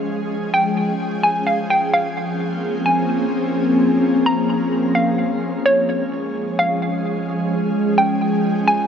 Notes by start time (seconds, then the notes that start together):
Already playing: F3 G#3 C#4 G#4
0.54 G5
1.23 G#5
1.47 F5
1.70 G5
1.93 F3 A#3 C4 C#4 F5
2.86 G#5
4.26 A#5
4.95 F5
5.65 F3 G#3 C#4 G#4 C#5
6.59 F5
7.98 G5
8.68 G#5